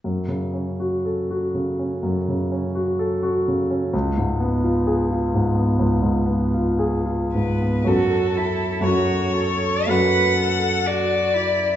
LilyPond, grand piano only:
\new Staff \with { instrumentName = "Grand piano" } { \time 4/4 \key fis \minor \tempo 4 = 63 fis,16 cis16 cis'16 fis'16 a'16 fis'16 cis16 cis'16 fis,16 cis16 cis'16 fis'16 a'16 fis'16 cis16 cis'16 | cis,16 gis,16 b16 eis'16 gis'16 eis'16 gis,16 b16 cis,16 gis,16 b16 eis'16 gis'16 eis'16 gis,16 b16 | <fis, cis' fis' a'>4 <fis, cis' fis' a'>4 <fis, cis' fis' a'>2 | }